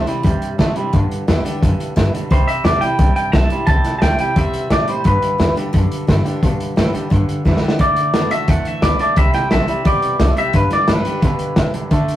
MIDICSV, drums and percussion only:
0, 0, Header, 1, 2, 480
1, 0, Start_track
1, 0, Key_signature, 1, "major"
1, 0, Tempo, 343249
1, 1303, Time_signature, 4, 2, 24, 8
1, 17005, End_track
2, 0, Start_track
2, 0, Title_t, "Drums"
2, 100, Note_on_c, 9, 42, 66
2, 240, Note_off_c, 9, 42, 0
2, 342, Note_on_c, 9, 42, 82
2, 343, Note_on_c, 9, 36, 117
2, 482, Note_off_c, 9, 36, 0
2, 482, Note_off_c, 9, 42, 0
2, 584, Note_on_c, 9, 42, 60
2, 724, Note_off_c, 9, 42, 0
2, 826, Note_on_c, 9, 36, 74
2, 826, Note_on_c, 9, 38, 110
2, 826, Note_on_c, 9, 42, 81
2, 965, Note_off_c, 9, 36, 0
2, 966, Note_off_c, 9, 38, 0
2, 966, Note_off_c, 9, 42, 0
2, 1059, Note_on_c, 9, 42, 65
2, 1199, Note_off_c, 9, 42, 0
2, 1306, Note_on_c, 9, 42, 76
2, 1309, Note_on_c, 9, 36, 111
2, 1446, Note_off_c, 9, 42, 0
2, 1449, Note_off_c, 9, 36, 0
2, 1558, Note_on_c, 9, 42, 59
2, 1697, Note_off_c, 9, 42, 0
2, 1793, Note_on_c, 9, 38, 108
2, 1793, Note_on_c, 9, 42, 88
2, 1932, Note_off_c, 9, 38, 0
2, 1932, Note_off_c, 9, 42, 0
2, 2038, Note_on_c, 9, 42, 67
2, 2178, Note_off_c, 9, 42, 0
2, 2273, Note_on_c, 9, 36, 115
2, 2276, Note_on_c, 9, 42, 84
2, 2413, Note_off_c, 9, 36, 0
2, 2416, Note_off_c, 9, 42, 0
2, 2520, Note_on_c, 9, 42, 68
2, 2660, Note_off_c, 9, 42, 0
2, 2753, Note_on_c, 9, 36, 82
2, 2758, Note_on_c, 9, 38, 107
2, 2758, Note_on_c, 9, 42, 94
2, 2893, Note_off_c, 9, 36, 0
2, 2897, Note_off_c, 9, 38, 0
2, 2897, Note_off_c, 9, 42, 0
2, 3001, Note_on_c, 9, 42, 68
2, 3141, Note_off_c, 9, 42, 0
2, 3230, Note_on_c, 9, 36, 108
2, 3232, Note_on_c, 9, 42, 80
2, 3370, Note_off_c, 9, 36, 0
2, 3371, Note_off_c, 9, 42, 0
2, 3473, Note_on_c, 9, 42, 66
2, 3613, Note_off_c, 9, 42, 0
2, 3703, Note_on_c, 9, 38, 113
2, 3703, Note_on_c, 9, 42, 97
2, 3842, Note_off_c, 9, 38, 0
2, 3842, Note_off_c, 9, 42, 0
2, 3939, Note_on_c, 9, 42, 68
2, 4078, Note_off_c, 9, 42, 0
2, 4179, Note_on_c, 9, 42, 83
2, 4182, Note_on_c, 9, 36, 102
2, 4319, Note_off_c, 9, 42, 0
2, 4322, Note_off_c, 9, 36, 0
2, 4421, Note_on_c, 9, 42, 61
2, 4560, Note_off_c, 9, 42, 0
2, 4662, Note_on_c, 9, 36, 79
2, 4662, Note_on_c, 9, 38, 108
2, 4662, Note_on_c, 9, 42, 82
2, 4802, Note_off_c, 9, 36, 0
2, 4802, Note_off_c, 9, 38, 0
2, 4802, Note_off_c, 9, 42, 0
2, 4896, Note_on_c, 9, 42, 61
2, 5035, Note_off_c, 9, 42, 0
2, 5132, Note_on_c, 9, 42, 74
2, 5139, Note_on_c, 9, 36, 104
2, 5271, Note_off_c, 9, 42, 0
2, 5279, Note_off_c, 9, 36, 0
2, 5376, Note_on_c, 9, 38, 31
2, 5376, Note_on_c, 9, 42, 58
2, 5516, Note_off_c, 9, 38, 0
2, 5516, Note_off_c, 9, 42, 0
2, 5618, Note_on_c, 9, 38, 114
2, 5618, Note_on_c, 9, 42, 87
2, 5757, Note_off_c, 9, 38, 0
2, 5757, Note_off_c, 9, 42, 0
2, 5853, Note_on_c, 9, 42, 63
2, 5993, Note_off_c, 9, 42, 0
2, 6098, Note_on_c, 9, 42, 80
2, 6101, Note_on_c, 9, 36, 107
2, 6237, Note_off_c, 9, 42, 0
2, 6241, Note_off_c, 9, 36, 0
2, 6341, Note_on_c, 9, 42, 66
2, 6481, Note_off_c, 9, 42, 0
2, 6579, Note_on_c, 9, 38, 111
2, 6579, Note_on_c, 9, 42, 87
2, 6583, Note_on_c, 9, 36, 84
2, 6719, Note_off_c, 9, 38, 0
2, 6719, Note_off_c, 9, 42, 0
2, 6722, Note_off_c, 9, 36, 0
2, 6818, Note_on_c, 9, 42, 66
2, 6957, Note_off_c, 9, 42, 0
2, 7060, Note_on_c, 9, 42, 88
2, 7065, Note_on_c, 9, 36, 113
2, 7199, Note_off_c, 9, 42, 0
2, 7205, Note_off_c, 9, 36, 0
2, 7305, Note_on_c, 9, 42, 72
2, 7445, Note_off_c, 9, 42, 0
2, 7547, Note_on_c, 9, 38, 116
2, 7547, Note_on_c, 9, 42, 94
2, 7687, Note_off_c, 9, 38, 0
2, 7687, Note_off_c, 9, 42, 0
2, 7791, Note_on_c, 9, 42, 73
2, 7931, Note_off_c, 9, 42, 0
2, 8024, Note_on_c, 9, 42, 88
2, 8027, Note_on_c, 9, 36, 112
2, 8164, Note_off_c, 9, 42, 0
2, 8167, Note_off_c, 9, 36, 0
2, 8272, Note_on_c, 9, 42, 65
2, 8412, Note_off_c, 9, 42, 0
2, 8508, Note_on_c, 9, 36, 79
2, 8509, Note_on_c, 9, 38, 116
2, 8509, Note_on_c, 9, 42, 78
2, 8648, Note_off_c, 9, 36, 0
2, 8649, Note_off_c, 9, 38, 0
2, 8649, Note_off_c, 9, 42, 0
2, 8750, Note_on_c, 9, 42, 62
2, 8890, Note_off_c, 9, 42, 0
2, 8988, Note_on_c, 9, 36, 112
2, 8990, Note_on_c, 9, 42, 82
2, 9128, Note_off_c, 9, 36, 0
2, 9130, Note_off_c, 9, 42, 0
2, 9234, Note_on_c, 9, 42, 62
2, 9374, Note_off_c, 9, 42, 0
2, 9471, Note_on_c, 9, 38, 117
2, 9471, Note_on_c, 9, 42, 80
2, 9611, Note_off_c, 9, 38, 0
2, 9611, Note_off_c, 9, 42, 0
2, 9713, Note_on_c, 9, 42, 60
2, 9853, Note_off_c, 9, 42, 0
2, 9949, Note_on_c, 9, 36, 102
2, 9953, Note_on_c, 9, 42, 84
2, 10088, Note_off_c, 9, 36, 0
2, 10093, Note_off_c, 9, 42, 0
2, 10191, Note_on_c, 9, 42, 62
2, 10331, Note_off_c, 9, 42, 0
2, 10426, Note_on_c, 9, 36, 77
2, 10428, Note_on_c, 9, 38, 60
2, 10566, Note_off_c, 9, 36, 0
2, 10568, Note_off_c, 9, 38, 0
2, 10583, Note_on_c, 9, 38, 71
2, 10723, Note_off_c, 9, 38, 0
2, 10744, Note_on_c, 9, 38, 102
2, 10884, Note_off_c, 9, 38, 0
2, 10895, Note_on_c, 9, 42, 83
2, 10903, Note_on_c, 9, 36, 108
2, 11035, Note_off_c, 9, 42, 0
2, 11043, Note_off_c, 9, 36, 0
2, 11136, Note_on_c, 9, 42, 67
2, 11275, Note_off_c, 9, 42, 0
2, 11378, Note_on_c, 9, 38, 122
2, 11378, Note_on_c, 9, 42, 100
2, 11518, Note_off_c, 9, 38, 0
2, 11518, Note_off_c, 9, 42, 0
2, 11618, Note_on_c, 9, 42, 68
2, 11758, Note_off_c, 9, 42, 0
2, 11856, Note_on_c, 9, 42, 89
2, 11862, Note_on_c, 9, 36, 107
2, 11995, Note_off_c, 9, 42, 0
2, 12002, Note_off_c, 9, 36, 0
2, 12099, Note_on_c, 9, 42, 67
2, 12239, Note_off_c, 9, 42, 0
2, 12338, Note_on_c, 9, 38, 105
2, 12338, Note_on_c, 9, 42, 93
2, 12343, Note_on_c, 9, 36, 80
2, 12477, Note_off_c, 9, 38, 0
2, 12477, Note_off_c, 9, 42, 0
2, 12483, Note_off_c, 9, 36, 0
2, 12576, Note_on_c, 9, 42, 71
2, 12716, Note_off_c, 9, 42, 0
2, 12813, Note_on_c, 9, 42, 83
2, 12822, Note_on_c, 9, 36, 108
2, 12953, Note_off_c, 9, 42, 0
2, 12962, Note_off_c, 9, 36, 0
2, 13055, Note_on_c, 9, 38, 34
2, 13055, Note_on_c, 9, 42, 61
2, 13194, Note_off_c, 9, 38, 0
2, 13194, Note_off_c, 9, 42, 0
2, 13296, Note_on_c, 9, 38, 120
2, 13296, Note_on_c, 9, 42, 84
2, 13436, Note_off_c, 9, 38, 0
2, 13436, Note_off_c, 9, 42, 0
2, 13538, Note_on_c, 9, 42, 62
2, 13677, Note_off_c, 9, 42, 0
2, 13776, Note_on_c, 9, 42, 78
2, 13782, Note_on_c, 9, 36, 115
2, 13916, Note_off_c, 9, 42, 0
2, 13922, Note_off_c, 9, 36, 0
2, 14016, Note_on_c, 9, 42, 61
2, 14156, Note_off_c, 9, 42, 0
2, 14258, Note_on_c, 9, 38, 121
2, 14258, Note_on_c, 9, 42, 84
2, 14260, Note_on_c, 9, 36, 75
2, 14398, Note_off_c, 9, 38, 0
2, 14398, Note_off_c, 9, 42, 0
2, 14400, Note_off_c, 9, 36, 0
2, 14498, Note_on_c, 9, 42, 64
2, 14638, Note_off_c, 9, 42, 0
2, 14729, Note_on_c, 9, 42, 79
2, 14738, Note_on_c, 9, 36, 102
2, 14869, Note_off_c, 9, 42, 0
2, 14878, Note_off_c, 9, 36, 0
2, 14970, Note_on_c, 9, 38, 33
2, 14970, Note_on_c, 9, 42, 69
2, 15110, Note_off_c, 9, 38, 0
2, 15110, Note_off_c, 9, 42, 0
2, 15210, Note_on_c, 9, 38, 120
2, 15210, Note_on_c, 9, 42, 87
2, 15350, Note_off_c, 9, 38, 0
2, 15350, Note_off_c, 9, 42, 0
2, 15450, Note_on_c, 9, 42, 70
2, 15590, Note_off_c, 9, 42, 0
2, 15695, Note_on_c, 9, 42, 84
2, 15697, Note_on_c, 9, 36, 113
2, 15834, Note_off_c, 9, 42, 0
2, 15837, Note_off_c, 9, 36, 0
2, 15925, Note_on_c, 9, 42, 65
2, 16065, Note_off_c, 9, 42, 0
2, 16168, Note_on_c, 9, 38, 113
2, 16168, Note_on_c, 9, 42, 94
2, 16175, Note_on_c, 9, 36, 83
2, 16308, Note_off_c, 9, 38, 0
2, 16308, Note_off_c, 9, 42, 0
2, 16315, Note_off_c, 9, 36, 0
2, 16414, Note_on_c, 9, 42, 67
2, 16554, Note_off_c, 9, 42, 0
2, 16657, Note_on_c, 9, 36, 97
2, 16657, Note_on_c, 9, 42, 85
2, 16796, Note_off_c, 9, 42, 0
2, 16797, Note_off_c, 9, 36, 0
2, 16898, Note_on_c, 9, 42, 61
2, 17005, Note_off_c, 9, 42, 0
2, 17005, End_track
0, 0, End_of_file